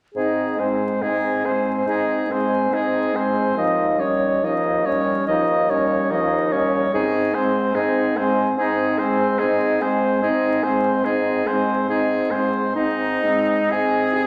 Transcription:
0.15 bassoon G#2, french horn C4, clarinet D#4, oboe G#4, flute D#5
0.59 french horn G#3, clarinet C4, oboe C5, flute G#5
1.02 bassoon G#2, french horn C4, clarinet D#4, oboe G#4, flute D#5
1.44 french horn G#3, clarinet C4, oboe C5, flute G#5
1.86 bassoon G#2, french horn C4, clarinet D#4, oboe G#4, flute D#5
2.29 french horn G#3, clarinet C4, oboe C5, flute G#5
2.71 bassoon G#2, french horn C4, clarinet D#4, oboe G#4, flute D#5
3.13 french horn G#3, clarinet C4, oboe C5, flute G#5
3.56 bassoon D#2, french horn F3, clarinet D#4, oboe D#5, flute F5
3.98 french horn G3, clarinet C#4, oboe C#5, flute D#5
4.42 bassoon D#2, french horn F3, clarinet D#4, oboe D#5, flute F5
4.84 french horn G3, clarinet C#4, oboe C#5, flute D#5
5.27 bassoon D#2, french horn F3, clarinet D#4, oboe D#5, flute F5
5.69 french horn G3, clarinet C#4, oboe C#5, flute D#5
6.10 bassoon D#2, french horn F3, clarinet D#4, oboe D#5, flute F5
6.52 french horn G3, clarinet C#4, oboe C#5, flute D#5
6.92 bassoon G#2, french horn C4, clarinet D#4, oboe G#4, flute D#5
7.34 french horn G#3, clarinet C4, oboe C5, flute G#5
7.74 bassoon G#2, french horn C4, clarinet D#4, oboe G#4, flute D#5
8.16 french horn G#3, clarinet C4, oboe C5, flute G#5
8.57 bassoon G#2, french horn C4, clarinet D#4, oboe G#4, flute D#5
8.99 french horn G#3, clarinet C4, oboe C5, flute G#5
9.39 bassoon G#2, french horn C4, clarinet D#4, oboe G#4, flute D#5
9.81 french horn G#3, clarinet C4, oboe C5, flute G#5
10.21 bassoon G#2, french horn C4, clarinet D#4, oboe G#4, flute D#5
10.63 french horn G#3, clarinet C4, oboe C5, flute G#5
11.04 bassoon G#2, french horn C4, clarinet D#4, oboe G#4, flute D#5
11.47 french horn G#3, clarinet C4, oboe C5, flute G#5
11.89 bassoon G#2, french horn C4, clarinet D#4, oboe G#4, flute D#5
12.31 french horn G#3, clarinet C4, oboe C5, flute G#5
12.75 bassoon G#2, french horn C4, oboe D#4, clarinet D#4, flute D#5
13.23 french horn G#3, clarinet C4
13.71 bassoon G#2, clarinet C4, french horn D#4, oboe G#4, flute G#5
14.15 french horn G4

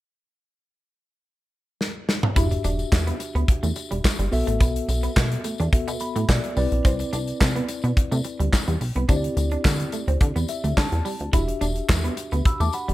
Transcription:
1.81 snare
2.09 snare
2.23 mid tom
2.35 analog synth bass E1, tine electric piano D4 F#4 G4 E5, clean electric guitar E4, kick, closed hi-hat, tambourine
2.51 muted clean electric guitar stroke, closed hi-hat, tambourine
2.64 analog synth bass E1, clean electric guitar D4, closed hi-hat, tambourine
2.79 closed hi-hat, tambourine
2.92 analog synth bass E2, kick, snare, clap, tambourine
3.07 clean electric guitar B3, closed hi-hat
3.20 muted clean electric guitar stroke, closed hi-hat, tambourine
3.35 analog synth bass D2, clean electric guitar B3, closed hi-hat
3.48 kick, closed hi-hat
3.63 analog synth bass E2, clean electric guitar A3, closed hi-hat, tambourine
3.76 muted clean electric guitar stroke, closed hi-hat, tambourine
3.91 analog synth bass E1, clean electric guitar G3, closed hi-hat
4.04 kick, snare, clap, tambourine
4.19 analog synth bass G1, clean electric guitar G3, closed hi-hat
4.31 analog synth bass B1, tine electric piano B3 F#4 A4 E5, muted clean electric guitar stroke, open hi-hat, tambourine
4.47 analog synth bass A1, clean electric guitar A3, closed hi-hat
4.60 analog synth bass B1, clean electric guitar B3, kick, closed hi-hat, tambourine
4.76 closed hi-hat
4.89 analog synth bass B1, muted clean electric guitar stroke, closed hi-hat, tambourine
5.03 clean electric guitar B3, closed hi-hat, tambourine
5.17 analog synth bass B2, muted clean electric guitar stroke, kick, snare, clap, tambourine
5.32 closed hi-hat
5.44 clean electric guitar A3, closed hi-hat, tambourine
5.58 analog synth bass E2, clean electric guitar D4, closed hi-hat, tambourine
5.72 analog synth bass B2, tine electric piano B3 F#4 A4 E5, kick, closed hi-hat
5.88 analog synth bass B2, clean electric guitar B3, closed hi-hat, tambourine
6.00 tine electric piano B5, muted clean electric guitar stroke, closed hi-hat, tambourine
6.16 analog synth bass A2, clean electric guitar A3, closed hi-hat, tambourine
6.29 analog synth bass B2, tine electric piano D5, kick, snare, clap, tambourine
6.44 closed hi-hat
6.56 analog synth bass C2, clean electric guitar G3, tine electric piano C4 E4 B4 D5, open hi-hat, tambourine
6.72 analog synth bass B1, closed hi-hat
6.85 analog synth bass C2, clean electric guitar C4, kick, closed hi-hat, tambourine
6.99 muted clean electric guitar stroke, closed hi-hat, tambourine
7.13 analog synth bass C2, clean electric guitar D4, closed hi-hat, tambourine
7.27 closed hi-hat, tambourine
7.41 analog synth bass C3, kick, snare, clap, tambourine
7.56 clean electric guitar B3, closed hi-hat
7.68 muted clean electric guitar stroke, closed hi-hat, tambourine
7.82 analog synth bass B2, clean electric guitar B3, closed hi-hat, tambourine
7.97 kick, closed hi-hat
8.12 analog synth bass C3, clean electric guitar A3, closed hi-hat, tambourine
8.24 muted clean electric guitar stroke, closed hi-hat, tambourine
8.40 analog synth bass D2, clean electric guitar G3, closed hi-hat
8.53 kick, snare, clap, tambourine
8.68 analog synth bass E2, clean electric guitar G3, closed hi-hat
8.81 analog synth bass B1, muted clean electric guitar stroke, open hi-hat, tambourine
8.95 analog synth bass C2, clean electric guitar B3, closed hi-hat
9.08 analog synth bass D2, tine electric piano C4 E4 G4 C5, clean electric guitar D4, kick, closed hi-hat, tambourine
9.17 tine electric piano D5
9.24 closed hi-hat
9.37 analog synth bass D2, muted clean electric guitar stroke, closed hi-hat, tambourine
9.51 clean electric guitar D4, closed hi-hat
9.65 analog synth bass D3, muted clean electric guitar stroke, kick, snare, clap, tambourine
9.80 closed hi-hat
9.92 clean electric guitar A3, closed hi-hat, tambourine
10.08 analog synth bass D2, clean electric guitar C4, closed hi-hat
10.21 analog synth bass D3, kick, closed hi-hat
10.36 analog synth bass E2, clean electric guitar B3, closed hi-hat, tambourine
10.48 tine electric piano E5, muted clean electric guitar stroke, closed hi-hat, tambourine
10.64 analog synth bass D2, clean electric guitar A3, closed hi-hat, tambourine
10.77 analog synth bass D3, tine electric piano A5, kick, snare, clap, tambourine
10.92 analog synth bass E2, closed hi-hat
11.05 clean electric guitar G3, open hi-hat, tambourine
11.20 analog synth bass D2, closed hi-hat
11.32 analog synth bass E1, tine electric piano D4 F#4 G4 E5, clean electric guitar E4, kick, closed hi-hat, tambourine
11.48 muted clean electric guitar stroke, closed hi-hat
11.61 analog synth bass E1, clean electric guitar D4, closed hi-hat, tambourine
11.76 closed hi-hat
11.89 analog synth bass E2, kick, snare, clap, tambourine
12.04 clean electric guitar B3, closed hi-hat
12.17 muted clean electric guitar stroke, closed hi-hat, tambourine
12.31 analog synth bass D2, clean electric guitar B3, closed hi-hat, tambourine
12.45 tine electric piano B5 E6, kick, closed hi-hat
12.60 analog synth bass E2, clean electric guitar A3, tine electric piano A5 D6, closed hi-hat, tambourine
12.73 tine electric piano F#5 B5, muted clean electric guitar stroke, closed hi-hat, tambourine
12.88 analog synth bass E1, clean electric guitar G3, closed hi-hat

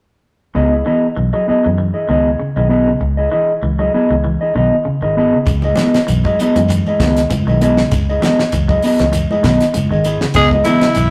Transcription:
0.55 fingered electric bass C#2, clean electric guitar C#3 B3 E4 G#4 D#5
0.72 clean electric guitar E4 G#4
0.86 clean electric guitar E3 B3 E4 G#4 D#5
1.16 fingered electric bass B1, clean electric guitar E3
1.33 clean electric guitar F#3 E4 G#4 D#5
1.47 clean electric guitar B3 E4 G#4 D#5, muted fingered electric bass stroke
1.65 fingered electric bass F#2, clean electric guitar E3
1.78 clean electric guitar E3
1.94 clean electric guitar E4 G#4 D#5
2.08 fingered electric bass C#2, clean electric guitar D#3 B3 E4 G#4 D#5
2.40 clean electric guitar C#3, muted fingered electric bass stroke
2.56 fingered electric bass B1, clean electric guitar D#3 E4 G#4 D#5
2.69 clean electric guitar B3 E4 G#4 D#5
2.88 clean electric guitar C#3
3.01 fingered electric bass C#2, muted clean electric guitar stroke
3.17 clean electric guitar E4 G#4 D#5
3.32 clean electric guitar E3 E4 G#4 D#5
3.62 fingered electric bass C#2, clean electric guitar E3
3.79 clean electric guitar F#3 E4 G#4 D#5
3.94 clean electric guitar B3 E4 G#4 D#5
4.10 fingered electric bass C#2, clean electric guitar E3
4.24 clean electric guitar E3
4.41 clean electric guitar E4 G#4 D#5
4.55 fingered electric bass B1, clean electric guitar D#3 B3 E4 D#5
4.85 clean electric guitar C#3, muted fingered electric bass stroke
5.02 fingered electric bass G#1, clean electric guitar D#3 E4 G#4 D#5
5.17 clean electric guitar B3 E4 G#4 D#5
5.32 clean electric guitar C#3, muted fingered electric bass stroke
5.46 fingered electric bass C#2, clean electric guitar C#3, kick, closed hi-hat, shekere
5.62 clean electric guitar E4 G#4 D#5, high conga, shekere
5.76 clean electric guitar E3 B3 E4, snare, closed hi-hat, high conga, shekere
5.80 clean electric guitar G#4 D#5
5.94 snare, closed hi-hat, shekere
6.07 fingered electric bass B1, clean electric guitar E3, closed hi-hat, shekere
6.24 clean electric guitar F#3 E4 G#4 D#5, kick, high conga, shekere
6.37 clean electric guitar B3 E4, muted fingered electric bass stroke, closed hi-hat, shekere
6.42 clean electric guitar G#4 D#5
6.56 fingered electric bass F#2, clean electric guitar E3, closed hi-hat, high conga, shekere
6.68 clean electric guitar E3, closed hi-hat, shekere
6.86 clean electric guitar E4 G#4 D#5, high conga, shekere
7.00 fingered electric bass C#2, clean electric guitar D#3 B3 E4 G#4 D#5, kick, snare, closed hi-hat, high conga, shekere
7.17 snare, closed hi-hat, shekere
7.30 clean electric guitar C#3, kick, closed hi-hat, high conga, shekere
7.47 fingered electric bass B1, clean electric guitar D#3 E4 G#4 D#5, shekere
7.61 clean electric guitar B3 E4 G#4 D#5, closed hi-hat, high conga, shekere
7.77 clean electric guitar C#3, snare, shekere
7.91 fingered electric bass C#2, clean electric guitar C#3, kick, closed hi-hat, shekere
8.09 clean electric guitar E4 G#4 D#5, shekere
8.22 clean electric guitar E3 B3 E4 G#4 D#5, snare, closed hi-hat, high conga, shekere
8.39 snare, shekere
8.52 fingered electric bass C#2, clean electric guitar E3, closed hi-hat, shekere
8.68 clean electric guitar F#3 E4 G#4 D#5, kick, shekere
8.82 clean electric guitar B3 E4 G#4 D#5, open hi-hat, shekere
8.99 fingered electric bass C#2, clean electric guitar E3, snare, closed hi-hat, high conga, shekere
9.13 clean electric guitar E3, closed hi-hat, shekere
9.31 clean electric guitar E4 G#4 D#5, high conga, shekere
9.43 fingered electric bass B1, clean electric guitar D#3 B3 E4 D#5, kick, snare, closed hi-hat, high conga, shekere
9.60 snare, closed hi-hat, shekere
9.74 clean electric guitar C#3, muted fingered electric bass stroke, closed hi-hat, high conga, shekere
9.91 fingered electric bass G#1, clean electric guitar D#3 G#4 D#5, shekere
10.04 clean electric guitar E4 G#4, closed hi-hat, shekere
10.21 clean electric guitar C#3, muted fingered electric bass stroke, snare, shekere
10.34 fingered electric bass C#2, clean electric guitar C#3 B3 E4 G#4 D#5, tenor saxophone G#4, kick, closed hi-hat, shekere
10.51 clean electric guitar E4 G#4 D#5, kick, high conga, shekere
10.65 tine electric piano C#3 F#3 B3 E4, clean electric guitar E3 B3 E4 G#4 D#5, tenor saxophone E4, closed hi-hat, high conga, shekere
10.81 snare, closed hi-hat, shekere
10.95 fingered electric bass B1, clean electric guitar E3, closed hi-hat, shekere

